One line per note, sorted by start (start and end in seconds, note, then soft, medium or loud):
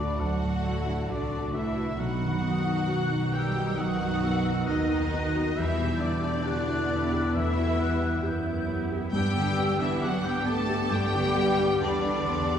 0.00 0.16 D2 medium
0.00 1.10 D2 medium
0.00 0.42 A2 soft
0.00 0.19 D3 medium
0.00 2.02 D3 soft
0.00 0.65 A3 soft
0.00 1.07 A3 medium
0.00 1.81 A3 medium
0.00 2.02 A3 soft
0.00 0.17 D4 medium
0.00 0.87 D4 soft
0.00 1.76 D4 soft
0.00 1.81 D4 medium
0.00 0.17 F#4 medium
0.00 1.09 F#4 soft
0.00 1.53 A4 soft
0.00 0.20 D5 medium
0.00 0.21 D5 medium
0.00 1.32 D5 soft
0.00 0.41 A5 soft
0.00 0.18 B5 medium
0.18 1.07 D2 soft
0.18 1.10 F#3 medium
0.18 0.64 D4 medium
0.18 1.11 F#4 medium
0.18 1.09 F#5 medium
0.18 0.83 F#5 medium
0.18 1.74 A5 medium
0.42 0.79 A2 soft
0.42 0.86 A5 soft
0.65 1.01 A3 soft
0.65 1.10 E4 medium
0.87 1.23 D4 soft
0.87 2.02 A5 soft
1.09 1.97 C2 medium
1.09 1.54 D3 medium
1.09 1.97 A3 medium
1.09 1.55 D4 medium
1.09 1.46 F#4 soft
1.09 1.99 F#4 medium
1.09 1.57 D5 medium
1.09 1.55 D5 medium
1.31 1.67 D4 soft
1.31 2.03 D5 soft
1.54 1.99 E3 medium
1.54 1.90 A3 soft
1.54 2.00 E4 medium
1.54 2.02 A4 soft
1.54 1.98 E5 medium
1.54 2.01 E5 medium
1.76 2.03 D4 soft
1.76 1.99 F#4 soft
1.98 3.74 B1 medium
1.98 4.67 B1 medium
1.98 5.60 B2 medium
1.98 3.30 F#3 medium
1.98 2.43 B3 medium
1.98 5.52 B3 medium
1.98 5.52 D#4 medium
1.98 3.30 F#4 medium
1.98 3.33 F#5 medium
1.98 3.34 F#5 medium
1.98 2.43 B5 medium
2.21 2.57 F#2 soft
2.21 5.60 D#3 soft
2.43 5.57 D#3 medium
2.43 5.35 B3 soft
2.43 2.79 B3 soft
2.43 2.89 D#6 medium
2.65 3.01 D#4 soft
2.87 3.23 F#4 soft
2.87 3.33 F#6 medium
3.10 3.46 D#4 soft
3.32 3.77 G3 medium
3.32 3.69 B3 soft
3.32 3.78 G4 medium
3.32 3.77 G5 medium
3.32 3.77 E6 medium
3.55 3.91 F#4 soft
3.55 3.99 F#5 medium
3.77 5.53 B1 soft
3.77 4.68 F#3 medium
3.77 4.68 F#4 medium
3.77 4.68 F#5 medium
3.77 4.23 D#6 medium
4.01 4.36 F#2 soft
4.01 4.44 F#5 medium
4.23 4.59 B3 soft
4.23 4.68 E6 medium
4.46 4.81 D#4 soft
4.46 5.61 F#5 medium
4.67 5.57 D#2 medium
4.67 5.57 D#3 medium
4.67 5.57 D#4 medium
4.67 5.04 F#4 medium
4.67 5.58 D#5 medium
4.67 5.55 D#5 medium
4.67 5.61 D#5 medium
4.67 5.57 F#6 medium
4.90 5.26 D#4 soft
5.13 5.48 B3 soft
5.13 5.61 F#4 medium
5.35 6.01 B3 medium
5.35 5.57 F#4 soft
5.56 8.20 E2 medium
5.56 7.31 E2 medium
5.56 9.18 E2 medium
5.56 6.00 E3 medium
5.56 6.44 G3 medium
5.56 8.96 B3 medium
5.56 8.96 E4 medium
5.56 6.44 E4 medium
5.56 6.00 E4 medium
5.56 6.01 E5 medium
5.56 6.03 E5 medium
5.56 6.44 G6 medium
5.78 6.14 B2 soft
5.78 9.18 B2 soft
6.00 7.32 D3 medium
6.00 6.36 B3 soft
6.00 8.90 B3 medium
6.00 7.35 D4 medium
6.00 7.33 D5 medium
6.00 7.35 D5 medium
6.22 6.59 E4 soft
6.22 9.18 E4 soft
6.45 7.35 B3 medium
6.45 6.91 F#4 medium
6.45 6.81 G4 medium
6.45 8.68 G4 medium
6.45 7.35 F#6 medium
6.67 7.04 E4 soft
6.91 7.26 B3 medium
6.91 7.34 E4 medium
6.91 7.34 E5 medium
7.12 7.48 G4 medium
7.12 7.56 G5 medium
7.34 8.21 E2 medium
7.34 8.24 E3 medium
7.34 7.79 A3 medium
7.34 8.22 E4 medium
7.34 8.24 E4 medium
7.34 8.22 E5 medium
7.34 8.24 E5 medium
7.34 7.79 E5 medium
7.34 7.79 E6 medium
7.57 7.93 B2 soft
7.57 8.01 G5 medium
7.78 8.24 G3 medium
7.78 8.14 B3 soft
7.78 8.24 F#6 medium
8.00 8.37 E4 soft
8.00 10.68 G5 medium
8.22 9.14 F#2 medium
8.22 10.88 B3 medium
8.22 9.12 E4 medium
8.22 8.59 G4 medium
8.22 9.18 E5 medium
8.22 8.82 G6 medium
8.45 8.82 E4 medium
8.67 9.04 B3 medium
8.67 10.02 G4 medium
8.91 9.58 B3 medium
8.91 9.14 G4 medium
9.12 10.87 G2 medium
9.12 11.78 G2 medium
9.12 12.59 G2 medium
9.12 9.77 G3 medium
9.12 12.59 B3 medium
9.12 10.02 D4 medium
9.12 12.59 G4 medium
9.12 9.77 G4 medium
9.12 9.81 G5 medium
9.12 9.76 G5 loud
9.12 10.01 E6 medium
9.35 9.72 D3 soft
9.35 12.59 D3 medium
9.58 9.94 B3 medium
9.58 12.53 B3 medium
9.80 10.03 E3 medium
9.80 10.16 D4 medium
9.80 12.59 D4 medium
9.80 10.03 E4 medium
9.80 10.03 E5 medium
10.02 10.25 F#3 medium
10.02 10.90 D4 medium
10.02 10.26 F#4 medium
10.02 12.29 G4 medium
10.02 10.39 G4 medium
10.02 10.26 F#5 medium
10.02 10.25 F#5 loud
10.02 11.81 D6 medium
10.24 10.48 G3 medium
10.24 10.61 D4 medium
10.24 10.47 G4 medium
10.24 10.47 G5 medium
10.24 10.48 G5 medium
10.46 10.92 A3 medium
10.46 10.82 B3 medium
10.46 10.92 A4 medium
10.46 10.91 D5 medium
10.46 10.92 A5 loud
10.69 11.05 G4 medium
10.69 11.14 G5 medium
10.90 11.79 G2 medium
10.90 11.82 G3 loud
10.90 11.37 A3 medium
10.90 11.82 B3 medium
10.90 11.82 G4 loud
10.90 11.36 D5 medium
10.90 11.80 G5 medium
10.90 11.82 G5 loud
11.14 11.50 D3 medium
11.36 12.59 G3 medium
11.36 11.73 B3 medium
11.36 11.81 D5 medium
11.59 11.96 D4 medium
11.81 12.59 E2 medium
11.81 12.59 D3 medium
11.81 12.59 B3 medium
11.81 12.59 D4 medium
11.81 12.20 G4 medium
11.81 12.59 D5 medium
11.81 12.59 D5 loud
11.81 12.29 B5 medium
12.05 12.44 D4 medium
12.29 12.59 B3 medium
12.29 12.59 G4 medium
12.29 12.59 C6 medium
12.54 12.59 B3 medium
12.54 12.59 G4 medium